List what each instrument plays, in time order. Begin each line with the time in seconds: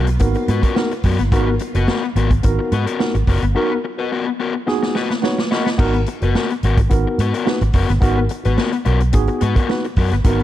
Already playing: fingered electric bass B1, string machine F#3 A#3 B3 F4
0.07 muted overdriven electric guitar stroke, closed hi-hat
0.19 fingered electric bass G#1, tine electric piano B3 D#4 F#4 A#4, muted overdriven electric guitar stroke, kick, closed hi-hat
0.34 muted overdriven electric guitar stroke, closed hi-hat
0.48 fingered electric bass G#2, overdriven electric guitar B3 F#4 B4, closed hi-hat
0.63 overdriven electric guitar B3 F#4 A#4, kick, closed hi-hat
0.76 tine electric piano B3 D#4 F#4 A#4, muted overdriven electric guitar stroke, snare
0.91 muted overdriven electric guitar stroke, closed hi-hat
1.03 fingered electric bass F#2, overdriven electric guitar B3 F#4 A#4, tine electric piano F#4 A#4, kick, open hi-hat
1.19 fingered electric bass G1, muted overdriven electric guitar stroke, snare, closed hi-hat
1.32 fingered electric bass G#1, tine electric piano B3 D#4 F#4 A#4, overdriven electric guitar B3 F#4 A#4, kick, closed hi-hat
1.48 muted overdriven electric guitar stroke
1.59 muted overdriven electric guitar stroke, closed hi-hat
1.74 fingered electric bass F#1, overdriven electric guitar B3 F#4 B4, tine electric piano F#4 A#4, closed hi-hat
1.87 overdriven electric guitar B3 F#4 A#4, tine electric piano F#4 A#4, snare
2.04 muted overdriven electric guitar stroke
2.15 fingered electric bass G#1, overdriven electric guitar B3 F#4 A#4, closed hi-hat
2.31 muted overdriven electric guitar stroke, kick, closed hi-hat
2.43 fingered electric bass G#1, tine electric piano B3 D#4 F#4 A#4, muted overdriven electric guitar stroke, kick, closed hi-hat
2.59 muted overdriven electric guitar stroke
2.72 fingered electric bass G#2, overdriven electric guitar B3 F#4 B4, closed hi-hat
2.87 overdriven electric guitar B3 F#4 A#4, closed hi-hat
2.99 tine electric piano B3 D#4 F#4 A#4, muted overdriven electric guitar stroke, snare
3.15 fingered electric bass G#1, muted overdriven electric guitar stroke, closed hi-hat
3.27 fingered electric bass F#1, overdriven electric guitar B3 F#4 A#4, tine electric piano F#4 B4, kick, open hi-hat
3.42 fingered electric bass G1, muted overdriven electric guitar stroke, closed hi-hat
3.55 tine electric piano B3 D#4 F#4 A#4, overdriven electric guitar B3 F#4 A#4
3.71 muted overdriven electric guitar stroke
3.84 muted overdriven electric guitar stroke
3.97 overdriven electric guitar B3 F#4 B4, tine electric piano F#4 A#4
4.10 overdriven electric guitar B3 F#4 A#4, tine electric piano F#4 A#4
4.27 muted overdriven electric guitar stroke
4.40 overdriven electric guitar B3 F#4 A#4
4.54 muted overdriven electric guitar stroke
4.66 tine electric piano B3 D#4 F#4 G#4, muted overdriven electric guitar stroke, snare
4.83 muted overdriven electric guitar stroke, snare
4.95 overdriven electric guitar B3 F#4 B4, snare
5.10 muted overdriven electric guitar stroke, snare
5.22 tine electric piano B3 D#4 F#4 B4 C#5, muted overdriven electric guitar stroke, snare
5.38 muted overdriven electric guitar stroke, snare
5.50 overdriven electric guitar B3 F#4 A#4, tine electric piano F#4 A#4 D#5, snare
5.66 muted overdriven electric guitar stroke, snare
5.78 fingered electric bass G#1, tine electric piano B3 D#4 F#4 A#4, overdriven electric guitar B3 F#4 A#4, kick, crash
5.94 muted overdriven electric guitar stroke, closed hi-hat
6.06 muted overdriven electric guitar stroke, closed hi-hat
6.21 fingered electric bass F#1, overdriven electric guitar B3 F#4 B4, tine electric piano F#4 A#4, closed hi-hat
6.34 overdriven electric guitar B3 F#4 A#4, tine electric piano F#4 A#4, snare
6.50 muted overdriven electric guitar stroke, closed hi-hat
6.63 fingered electric bass G#1, overdriven electric guitar B3 F#4 A#4, closed hi-hat
6.77 muted overdriven electric guitar stroke, kick, closed hi-hat
6.89 fingered electric bass G#1, tine electric piano B3 D#4 F#4 A#4, muted overdriven electric guitar stroke, kick, closed hi-hat
7.07 muted overdriven electric guitar stroke
7.18 fingered electric bass G#2, overdriven electric guitar B3 F#4 B4, closed hi-hat
7.34 overdriven electric guitar B3 F#4 A#4, closed hi-hat
7.45 tine electric piano B3 D#4 F#4 B4, muted overdriven electric guitar stroke, snare
7.61 fingered electric bass G#1, muted overdriven electric guitar stroke, closed hi-hat
7.73 fingered electric bass F#1, overdriven electric guitar B3 F#4 A#4, tine electric piano F#4 B4, kick, open hi-hat
7.89 fingered electric bass G1, muted overdriven electric guitar stroke, snare, closed hi-hat
8.01 fingered electric bass G#1, tine electric piano B3 D#4 F#4 A#4, overdriven electric guitar B3 F#4 A#4, kick, closed hi-hat
8.18 muted overdriven electric guitar stroke
8.29 muted overdriven electric guitar stroke, closed hi-hat
8.43 fingered electric bass G#1, overdriven electric guitar B3 F#4 B4, tine electric piano F#4 B4, closed hi-hat
8.56 overdriven electric guitar B3 F#4 A#4, tine electric piano F#4 B4, snare
8.72 muted overdriven electric guitar stroke, closed hi-hat
8.85 fingered electric bass B1, overdriven electric guitar B3 F#4 A#4, closed hi-hat
9.00 muted overdriven electric guitar stroke, closed hi-hat
9.13 fingered electric bass G#1, tine electric piano B3 D#4 F#4 G#4, muted overdriven electric guitar stroke, kick, closed hi-hat
9.27 muted overdriven electric guitar stroke, closed hi-hat
9.41 fingered electric bass G#2, overdriven electric guitar B3 F#4 B4, closed hi-hat
9.56 overdriven electric guitar B3 F#4 A#4, kick, closed hi-hat
9.68 tine electric piano B3 D#4 F#4 B4, muted overdriven electric guitar stroke, snare
9.84 muted overdriven electric guitar stroke, closed hi-hat
9.96 fingered electric bass F#2, overdriven electric guitar B3 F#4 A#4, tine electric piano F#4 A#4, kick, open hi-hat
10.11 fingered electric bass G1, muted overdriven electric guitar stroke, snare, closed hi-hat
10.24 fingered electric bass G#1, tine electric piano B3 D#4 F#4 A#4, overdriven electric guitar B3 F#4 A#4, kick, closed hi-hat
10.39 closed hi-hat